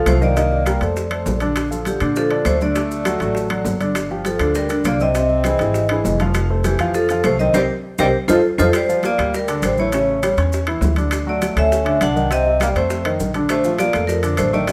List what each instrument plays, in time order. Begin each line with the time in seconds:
Already playing: grand piano F3 F4 F5
0.06 upright bass C2, tenor saxophone A3, vibraphone C5, high bongo, low bongo, high conga, high timbale, low timbale, claves, maracas
0.21 grand piano D#3 D#4 D#5, tenor saxophone A#3, vibraphone D5, high bongo, high conga, maracas
0.36 grand piano D#3 D#4 D#5, high bongo, high timbale, maracas
0.51 high bongo, high conga
0.66 grand piano G3 G4 A#4, high bongo, high conga, high timbale, claves, maracas
0.81 upright bass F2, grand piano A3 A4 C5, high bongo, high timbale, maracas
0.96 high bongo, high conga, maracas
1.11 grand piano A3 A4 C5, high conga, high timbale, claves
1.26 upright bass A#1, high bongo, low bongo, high conga, low timbale, maracas
1.40 grand piano D3 D4 D5, high bongo, high conga, high timbale, maracas
1.56 high bongo, high conga, high timbale, claves, maracas
1.71 grand piano F3 F4 A4, high bongo, high conga, maracas
1.85 tenor saxophone D3, vibraphone G4, high bongo, high conga, high timbale, maracas
2.00 upright bass A#2, grand piano D3 D4 D5, high bongo, high conga, high timbale, claves, maracas
2.16 tenor saxophone F3, vibraphone A4, high bongo, high conga, maracas
2.31 grand piano D3 D4 D5, high conga, high timbale
2.45 upright bass D2, tenor saxophone A3, vibraphone C5, high bongo, low bongo, high conga, high timbale, low timbale, claves, maracas
2.61 grand piano D3 D4 D5, tenor saxophone A3, vibraphone D5, high bongo, high conga, maracas
2.75 grand piano D3 D4 D5, high bongo, high timbale, maracas
2.91 high bongo, high conga, maracas
3.05 grand piano F#3 F#4 A4, high bongo, high conga, high timbale, claves, maracas
3.20 upright bass A1, grand piano F#3 F#4 A4, high bongo, high timbale, maracas
3.35 high bongo, high conga, maracas
3.50 grand piano F#3 F#4 A4, high conga, high timbale, claves
3.65 upright bass G1, high bongo, low bongo, high conga, low timbale, maracas
3.80 grand piano D3 D4 D5, high bongo, high conga, high timbale, maracas
3.95 high bongo, high timbale, claves, maracas
4.10 grand piano F3 F4 G4, high bongo, high conga
4.25 tenor saxophone F3, vibraphone A4, high bongo, high conga, high timbale, maracas
4.39 upright bass D2, grand piano D3 D4 D5, high bongo, high conga, high timbale, claves, maracas
4.55 tenor saxophone G3, vibraphone A#4, high bongo, high conga, maracas
4.69 grand piano D3 D4 D5, high conga, high timbale, maracas
4.84 upright bass C2, tenor saxophone A#3, vibraphone D5, high bongo, low bongo, high conga, high timbale, low timbale, claves, maracas
5.00 grand piano C3 C4 C5, tenor saxophone C4, vibraphone D#5, high bongo, high conga, maracas
5.15 grand piano C3 C4 C5, high bongo, high conga, high timbale, maracas
5.29 high bongo, high conga
5.44 grand piano E3 E4 G#4, high bongo, high conga, high timbale, claves, maracas
5.59 upright bass G#1, grand piano E3 E4 G#4, high bongo, high timbale, maracas
5.74 high bongo, high conga, maracas
5.89 grand piano E3 E4 G#4, high conga, high timbale, claves
6.04 upright bass F1, high bongo, low bongo, high conga, low timbale, maracas
6.20 grand piano F3 F4 F5, high bongo, high conga, high timbale, maracas
6.34 high bongo, high timbale, claves, maracas
6.49 grand piano A3 A4 C5, high bongo, high conga
6.64 tenor saxophone E3, vibraphone G4, high bongo, high conga, high timbale, maracas
6.79 upright bass F2, grand piano F3 F4 F5, high bongo, high timbale, claves, maracas
6.94 tenor saxophone F3, vibraphone A4, high bongo, high conga, maracas
7.09 grand piano F3 F4 F5, high conga, high timbale, maracas
7.24 upright bass C2, tenor saxophone A3, vibraphone C5, high bongo, low bongo, high conga, high timbale, low timbale, claves, maracas
7.39 grand piano D#3 D#4 D#5, tenor saxophone C4, vibraphone D#5, high bongo, high conga, maracas
7.54 upright bass C2, tenor saxophone G3, grand piano C4 D#4 G4, vibraphone G4 A#4 C5, low bongo, high conga, high timbale, claves, maracas
7.98 upright bass C2, tenor saxophone G3, grand piano C4 D#4 G4, vibraphone G4 A#4 C5, low bongo, high conga, high timbale, claves, maracas
8.28 upright bass F2, tenor saxophone F3, grand piano D#4 F4 A4, vibraphone F4 A4 C5, low bongo, high conga, high timbale, claves, maracas
8.58 upright bass F2, tenor saxophone F3, grand piano D#4 F4 A4, vibraphone F4 A4 C5, low bongo, high conga, high timbale, claves, maracas
8.73 tenor saxophone G3, vibraphone C5, high bongo, high conga, high timbale, claves, maracas
8.88 grand piano F3 F4, high bongo, high conga, maracas
9.03 tenor saxophone A#3, vibraphone D5, high bongo, high conga, high timbale, maracas
9.18 upright bass D2, grand piano G3 G4, high bongo, high conga, high timbale, claves, maracas
9.33 tenor saxophone G3, vibraphone A#4, high bongo, high conga, maracas
9.48 grand piano D3 D4, high conga, high timbale, maracas
9.62 upright bass A1, tenor saxophone G3, vibraphone C5, high bongo, low bongo, high conga, high timbale, claves, maracas
9.78 grand piano E3 E4, tenor saxophone A3, vibraphone C#5, high bongo, high conga, maracas
9.92 grand piano C#3 C#4, high bongo, high timbale, maracas
10.09 high bongo, high conga
10.22 grand piano G3 G4, high bongo, high conga, high timbale, claves, maracas
10.37 upright bass E2, grand piano C#4 C#5, high bongo, high timbale, maracas
10.53 high bongo, high conga, maracas
10.67 grand piano E3 E4, high conga, high timbale, claves
10.81 upright bass D2, high bongo, low bongo, high conga, low timbale, maracas
10.96 grand piano D3 D4, high bongo, high conga, high timbale, maracas
11.11 high bongo, high conga, high timbale, claves, maracas
11.27 grand piano F#3 F#4, tenor saxophone A3, vibraphone D5, high bongo, high conga
11.42 high bongo, high conga, high timbale, maracas
11.56 upright bass D2, grand piano A3 A4, tenor saxophone C#4, vibraphone E5, high bongo, high conga, high timbale, claves, maracas
11.71 high bongo, high conga, maracas
11.85 grand piano D3 D4, high conga, high timbale
12.01 upright bass C2, tenor saxophone D4, vibraphone F#5, high bongo, low bongo, high conga, high timbale, claves, maracas
12.16 grand piano D#3 D#4, high bongo, high conga, maracas
12.30 grand piano C3 C4, tenor saxophone C4, vibraphone D#5, high bongo, high timbale, maracas
12.46 high bongo, high conga
12.60 grand piano G3 G4, tenor saxophone A#3, vibraphone D5, high bongo, high conga, high timbale, claves, maracas
12.75 upright bass F2, tenor saxophone A3, grand piano C4 C5, vibraphone C5, high bongo, high timbale, maracas
12.90 high bongo, high conga, maracas
13.05 grand piano D#3 D#4, high conga, high timbale, claves
13.19 upright bass A#1, high bongo, low bongo, high conga, maracas
13.34 grand piano D3 D4, high bongo, high conga, high timbale, maracas
13.49 tenor saxophone A3, vibraphone C5, high bongo, high conga, high timbale, claves, maracas
13.64 grand piano F3 F4, high bongo, high conga, maracas
13.78 tenor saxophone A#3, vibraphone D5, high bongo, high conga, high timbale, maracas
13.93 upright bass F2, grand piano A3 A4, high bongo, high conga, high timbale, claves, maracas
14.07 tenor saxophone F3, vibraphone A#4, high bongo, high conga, maracas
14.23 grand piano D3 D4, high conga, high timbale, maracas
14.37 upright bass A1, tenor saxophone A3, vibraphone C5, high bongo, low bongo, high conga, high timbale, claves, maracas
14.53 grand piano D#3 D#4, tenor saxophone A3, vibraphone D5, high bongo, high conga, maracas
14.67 grand piano C3 C4, high bongo, high timbale, maracas